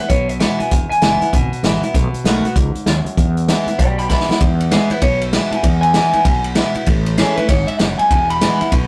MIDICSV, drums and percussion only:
0, 0, Header, 1, 2, 480
1, 0, Start_track
1, 0, Key_signature, 4, "major"
1, 0, Tempo, 308008
1, 1108, Time_signature, 4, 2, 24, 8
1, 13828, End_track
2, 0, Start_track
2, 0, Title_t, "Drums"
2, 150, Note_on_c, 9, 42, 83
2, 151, Note_on_c, 9, 36, 105
2, 305, Note_off_c, 9, 42, 0
2, 307, Note_off_c, 9, 36, 0
2, 453, Note_on_c, 9, 42, 67
2, 609, Note_off_c, 9, 42, 0
2, 632, Note_on_c, 9, 38, 107
2, 632, Note_on_c, 9, 42, 86
2, 788, Note_off_c, 9, 38, 0
2, 788, Note_off_c, 9, 42, 0
2, 937, Note_on_c, 9, 42, 61
2, 1093, Note_off_c, 9, 42, 0
2, 1112, Note_on_c, 9, 42, 87
2, 1115, Note_on_c, 9, 36, 99
2, 1268, Note_off_c, 9, 42, 0
2, 1271, Note_off_c, 9, 36, 0
2, 1425, Note_on_c, 9, 42, 66
2, 1581, Note_off_c, 9, 42, 0
2, 1590, Note_on_c, 9, 38, 108
2, 1590, Note_on_c, 9, 42, 84
2, 1746, Note_off_c, 9, 38, 0
2, 1746, Note_off_c, 9, 42, 0
2, 1898, Note_on_c, 9, 42, 59
2, 2054, Note_off_c, 9, 42, 0
2, 2073, Note_on_c, 9, 36, 108
2, 2077, Note_on_c, 9, 42, 83
2, 2229, Note_off_c, 9, 36, 0
2, 2233, Note_off_c, 9, 42, 0
2, 2379, Note_on_c, 9, 42, 63
2, 2535, Note_off_c, 9, 42, 0
2, 2556, Note_on_c, 9, 38, 111
2, 2556, Note_on_c, 9, 42, 84
2, 2712, Note_off_c, 9, 38, 0
2, 2712, Note_off_c, 9, 42, 0
2, 2858, Note_on_c, 9, 42, 59
2, 3014, Note_off_c, 9, 42, 0
2, 3030, Note_on_c, 9, 36, 107
2, 3031, Note_on_c, 9, 42, 77
2, 3185, Note_off_c, 9, 36, 0
2, 3186, Note_off_c, 9, 42, 0
2, 3336, Note_on_c, 9, 42, 61
2, 3491, Note_off_c, 9, 42, 0
2, 3514, Note_on_c, 9, 38, 108
2, 3514, Note_on_c, 9, 42, 76
2, 3670, Note_off_c, 9, 38, 0
2, 3670, Note_off_c, 9, 42, 0
2, 3814, Note_on_c, 9, 42, 60
2, 3970, Note_off_c, 9, 42, 0
2, 3982, Note_on_c, 9, 42, 81
2, 3986, Note_on_c, 9, 36, 106
2, 4138, Note_off_c, 9, 42, 0
2, 4142, Note_off_c, 9, 36, 0
2, 4289, Note_on_c, 9, 42, 62
2, 4445, Note_off_c, 9, 42, 0
2, 4464, Note_on_c, 9, 38, 107
2, 4464, Note_on_c, 9, 42, 87
2, 4620, Note_off_c, 9, 38, 0
2, 4620, Note_off_c, 9, 42, 0
2, 4770, Note_on_c, 9, 42, 61
2, 4926, Note_off_c, 9, 42, 0
2, 4947, Note_on_c, 9, 36, 110
2, 4947, Note_on_c, 9, 42, 81
2, 5103, Note_off_c, 9, 36, 0
2, 5103, Note_off_c, 9, 42, 0
2, 5251, Note_on_c, 9, 42, 67
2, 5407, Note_off_c, 9, 42, 0
2, 5429, Note_on_c, 9, 38, 104
2, 5429, Note_on_c, 9, 42, 90
2, 5585, Note_off_c, 9, 38, 0
2, 5585, Note_off_c, 9, 42, 0
2, 5727, Note_on_c, 9, 42, 66
2, 5883, Note_off_c, 9, 42, 0
2, 5905, Note_on_c, 9, 42, 86
2, 5907, Note_on_c, 9, 36, 103
2, 6060, Note_off_c, 9, 42, 0
2, 6062, Note_off_c, 9, 36, 0
2, 6210, Note_on_c, 9, 42, 66
2, 6366, Note_off_c, 9, 42, 0
2, 6389, Note_on_c, 9, 36, 82
2, 6391, Note_on_c, 9, 38, 60
2, 6545, Note_off_c, 9, 36, 0
2, 6547, Note_off_c, 9, 38, 0
2, 6549, Note_on_c, 9, 38, 69
2, 6705, Note_off_c, 9, 38, 0
2, 6713, Note_on_c, 9, 38, 100
2, 6868, Note_off_c, 9, 38, 0
2, 6870, Note_on_c, 9, 36, 105
2, 6873, Note_on_c, 9, 51, 73
2, 7025, Note_off_c, 9, 36, 0
2, 7029, Note_off_c, 9, 51, 0
2, 7175, Note_on_c, 9, 51, 65
2, 7331, Note_off_c, 9, 51, 0
2, 7348, Note_on_c, 9, 38, 104
2, 7348, Note_on_c, 9, 51, 80
2, 7503, Note_off_c, 9, 38, 0
2, 7503, Note_off_c, 9, 51, 0
2, 7648, Note_on_c, 9, 51, 62
2, 7804, Note_off_c, 9, 51, 0
2, 7816, Note_on_c, 9, 51, 87
2, 7823, Note_on_c, 9, 36, 107
2, 7972, Note_off_c, 9, 51, 0
2, 7978, Note_off_c, 9, 36, 0
2, 8126, Note_on_c, 9, 51, 67
2, 8282, Note_off_c, 9, 51, 0
2, 8304, Note_on_c, 9, 38, 113
2, 8304, Note_on_c, 9, 51, 86
2, 8460, Note_off_c, 9, 38, 0
2, 8460, Note_off_c, 9, 51, 0
2, 8608, Note_on_c, 9, 51, 69
2, 8764, Note_off_c, 9, 51, 0
2, 8781, Note_on_c, 9, 51, 87
2, 8782, Note_on_c, 9, 36, 101
2, 8937, Note_off_c, 9, 51, 0
2, 8938, Note_off_c, 9, 36, 0
2, 9084, Note_on_c, 9, 51, 68
2, 9240, Note_off_c, 9, 51, 0
2, 9255, Note_on_c, 9, 38, 106
2, 9255, Note_on_c, 9, 51, 90
2, 9411, Note_off_c, 9, 38, 0
2, 9411, Note_off_c, 9, 51, 0
2, 9558, Note_on_c, 9, 51, 64
2, 9713, Note_off_c, 9, 51, 0
2, 9738, Note_on_c, 9, 51, 88
2, 9741, Note_on_c, 9, 36, 113
2, 9894, Note_off_c, 9, 51, 0
2, 9897, Note_off_c, 9, 36, 0
2, 10038, Note_on_c, 9, 51, 66
2, 10194, Note_off_c, 9, 51, 0
2, 10214, Note_on_c, 9, 38, 108
2, 10214, Note_on_c, 9, 51, 85
2, 10370, Note_off_c, 9, 38, 0
2, 10370, Note_off_c, 9, 51, 0
2, 10525, Note_on_c, 9, 51, 58
2, 10681, Note_off_c, 9, 51, 0
2, 10706, Note_on_c, 9, 36, 104
2, 10707, Note_on_c, 9, 51, 78
2, 10862, Note_off_c, 9, 36, 0
2, 10863, Note_off_c, 9, 51, 0
2, 11006, Note_on_c, 9, 51, 66
2, 11161, Note_off_c, 9, 51, 0
2, 11189, Note_on_c, 9, 38, 105
2, 11189, Note_on_c, 9, 51, 78
2, 11345, Note_off_c, 9, 38, 0
2, 11345, Note_off_c, 9, 51, 0
2, 11490, Note_on_c, 9, 51, 62
2, 11646, Note_off_c, 9, 51, 0
2, 11665, Note_on_c, 9, 38, 33
2, 11665, Note_on_c, 9, 51, 85
2, 11668, Note_on_c, 9, 36, 106
2, 11821, Note_off_c, 9, 38, 0
2, 11821, Note_off_c, 9, 51, 0
2, 11824, Note_off_c, 9, 36, 0
2, 11968, Note_on_c, 9, 51, 65
2, 12123, Note_off_c, 9, 51, 0
2, 12151, Note_on_c, 9, 38, 114
2, 12151, Note_on_c, 9, 51, 82
2, 12307, Note_off_c, 9, 38, 0
2, 12307, Note_off_c, 9, 51, 0
2, 12453, Note_on_c, 9, 51, 64
2, 12609, Note_off_c, 9, 51, 0
2, 12631, Note_on_c, 9, 51, 86
2, 12633, Note_on_c, 9, 36, 107
2, 12787, Note_off_c, 9, 51, 0
2, 12789, Note_off_c, 9, 36, 0
2, 12938, Note_on_c, 9, 51, 70
2, 13093, Note_off_c, 9, 51, 0
2, 13112, Note_on_c, 9, 38, 113
2, 13112, Note_on_c, 9, 51, 89
2, 13268, Note_off_c, 9, 38, 0
2, 13268, Note_off_c, 9, 51, 0
2, 13414, Note_on_c, 9, 51, 63
2, 13570, Note_off_c, 9, 51, 0
2, 13586, Note_on_c, 9, 51, 85
2, 13589, Note_on_c, 9, 36, 112
2, 13742, Note_off_c, 9, 51, 0
2, 13745, Note_off_c, 9, 36, 0
2, 13828, End_track
0, 0, End_of_file